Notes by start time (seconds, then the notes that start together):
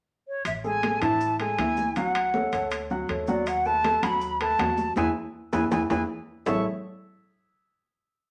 0.28 C#5
0.45 A1 E5, high conga, high timbale, maracas
0.64 G#3 G#4 A4 G#5, high conga, maracas
0.83 G#3 G#4 A4, high conga, high timbale, maracas
1.02 A2 E3 E4 E5 A5, high conga, high timbale, maracas
1.20 high conga, maracas
1.39 G#3 G#4 A4 G#5, high conga, high timbale, maracas
1.58 D2 E3 E4 E5, high conga, high timbale, maracas
1.77 high conga, maracas
1.96 F#3 F#4 F#5, high conga, high timbale, maracas
2.15 high conga, high timbale, maracas
2.34 A3 A4 C#5, high conga, maracas
2.52 D2 A3 A4 C#5, high conga, high timbale, maracas
2.71 high conga, high timbale, maracas
2.90 F#3 F#4 F#5, high conga, maracas
3.08 D#2 A3 A4 C#5, high conga, high timbale, maracas
3.27 F#3 F#4 D5 F#5, high conga, maracas
3.46 F#5, high conga, high timbale, maracas
3.65 A3 A4 B4 A5, high conga, maracas
3.84 A3 A4 B4, high conga, high timbale, maracas
4.02 D#2 F#3 F#4 F#5 B5, high conga, high timbale, maracas
4.21 high conga, maracas
4.40 A3 A4 B4 A5, high conga, high timbale, maracas
4.59 E2 F#3 F#4 F#5, high conga, high timbale, low timbale, maracas
4.77 high conga, maracas
4.96 E2 E4 G#4 B4 G#5, high conga, high timbale, maracas
5.53 E2 E4 G#4 B4 G#5, high conga, high timbale, maracas
5.71 E2 E4 G#4 B4 G#5, high conga, high timbale, maracas
5.90 E2 E4 G#4 B4 G#5, high conga, high timbale, maracas
6.46 A1 A3 E4 G#4 A4 C#5 E5 C#6, low conga, low timbale, maracas